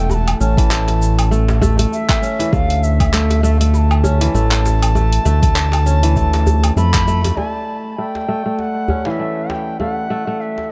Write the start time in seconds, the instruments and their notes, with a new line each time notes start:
Already playing: analog synth bass E1, kora E3 A3 C#4, singing bowl A4, bansuri G5
0.10 bansuri B5, djembe tone, cabasa
0.14 bansuri A5
0.28 open hi-hat, cabasa, low woodblock
0.41 analog synth bass A1, kora C#4, bansuri A5, cabasa
0.57 kora E3, kick, open hi-hat, cabasa
0.70 kora A3, clap, cabasa
0.88 open hi-hat, djembe slap, cabasa
1.02 cabasa
1.19 open hi-hat, cabasa, low woodblock
1.31 kora A3, cabasa
1.48 djembe slap, cabasa
1.61 kora A3, djembe bass, cabasa
1.78 kora A3, open hi-hat, djembe tone, cabasa
1.93 bansuri E5, cabasa
2.09 kick, clap, cabasa, low woodblock
2.22 kora C#4, cabasa
2.39 kora E3, open hi-hat, djembe slap, cabasa
2.53 analog synth bass D2, kora A3, bansuri F5, kick, djembe tone, cabasa
2.70 open hi-hat, cabasa
2.83 bansuri E5, cabasa
3.00 kick, open hi-hat, cabasa, low woodblock
3.13 kora A3, clap, cabasa
3.30 open hi-hat, djembe slap, cabasa
3.43 kora A3, bansuri E5, cabasa
3.60 kora A3, open hi-hat, cabasa
3.74 bansuri B5, djembe slap, cabasa
3.78 bansuri A5
3.91 cabasa, low woodblock
4.04 kora C#4, djembe bass, cabasa
4.21 kora E3, open hi-hat, djembe slap, cabasa
4.34 analog synth bass A1, kora A3, cabasa
4.51 clap, cabasa
4.65 djembe slap, cabasa
4.82 open hi-hat, cabasa, low woodblock
4.95 kora A3, djembe tone, cabasa
5.13 open hi-hat, cabasa
5.25 analog synth bass D2, kora A3, cabasa
5.42 kora A3, kick, open hi-hat, djembe slap, cabasa
5.56 clap, cabasa
5.72 open hi-hat, djembe slap, cabasa, low woodblock
5.86 kora C#4, cabasa
6.03 kora E3, open hi-hat, cabasa
6.16 kora A3, kick, cabasa
6.33 open hi-hat, djembe slap, cabasa
6.47 djembe bass, cabasa
6.63 open hi-hat, djembe tone, cabasa, low woodblock
6.76 analog synth bass F2, kora A3, bansuri B5, cabasa
6.94 kick, clap, open hi-hat
7.08 kora A3, cabasa
7.24 kora A3, open hi-hat, djembe slap, djembe tone, cabasa
7.37 kora A3, singing bowl D5, bansuri G#5, djembe tone
7.48 bansuri A5
7.92 bansuri A5
7.98 kora A3, bansuri G5
8.15 djembe slap
8.28 kora A3
8.46 kora A3
8.59 bansuri F#5, djembe slap
8.88 kora C#4, djembe bass, cabasa
9.05 kora E3, bansuri F5, djembe slap
9.10 bansuri E5
9.19 kora A3, cabasa
9.37 cabasa
9.50 bansuri G5, djembe slap, cabasa
9.67 cabasa
9.80 kora A3, bansuri F#5, djembe tone, cabasa
9.98 cabasa
10.10 kora A3, cabasa
10.27 kora A3, cabasa
10.40 bansuri E5, cabasa
10.58 djembe slap, cabasa